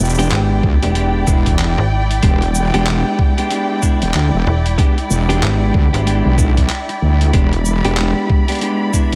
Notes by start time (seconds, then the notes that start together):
Already playing: G#3 E4 D5 G5
0.00 E1
0.05 shaker
0.09 shaker
0.14 shaker
0.19 G#3 B3 D4 G4, cross-stick, closed hi-hat, shaker
0.22 shaker
0.25 shaker
0.31 G#1, clap, closed hi-hat
0.63 D2, kick
0.82 E1 G#3 B3 D4 G4, closed hi-hat
0.95 G#3 B3 D4 G4, closed hi-hat
1.27 E1 G#3 B3 D4 E4, kick, shaker
1.46 kick, closed hi-hat
1.59 clap, closed hi-hat
1.78 G#1, cross-stick
2.11 closed hi-hat
2.23 E1 G#3 B3 D4 G4, kick, closed hi-hat
2.42 closed hi-hat
2.55 shaker
2.74 E1 G#3 B3 D4 G4, cross-stick, closed hi-hat
2.86 clap, closed hi-hat
3.19 kick
3.38 G#3 B3 D4 G4, closed hi-hat
3.50 G#3 B3 D4 G4, closed hi-hat
3.82 G#3 B3 D4 E4, kick, shaker
4.02 E1, closed hi-hat
4.14 D2, clap, closed hi-hat
4.34 E1
4.47 E1
4.66 closed hi-hat
4.78 G#3 B3 D4 G4, kick, closed hi-hat
4.98 closed hi-hat
5.10 E1, shaker
5.29 G#3 B3 D4 G4, closed hi-hat
5.43 G#1, clap, closed hi-hat
5.74 D2, kick
5.93 G#1 G#3 B3 D4 G4, closed hi-hat
6.05 G#3 B3 D4 G4, closed hi-hat
6.25 B1
6.38 G#3 B3 D4 E4, kick, shaker
6.57 kick, closed hi-hat
6.70 clap, closed hi-hat
6.89 cross-stick, closed hi-hat
7.02 D2
7.21 closed hi-hat
7.33 E1 G#3 B3 D4 G4 B5, kick, closed hi-hat
7.53 closed hi-hat
7.65 shaker
7.85 E1 G#3 B3 D4 G4, cross-stick, closed hi-hat
7.97 clap, closed hi-hat
8.30 kick
8.48 G#3 B3 D4 G4, closed hi-hat
8.52 closed hi-hat
8.55 closed hi-hat
8.59 G#3, closed hi-hat
8.61 B3 D4 G4, closed hi-hat
8.93 G#3 B3 D4 E4, kick, shaker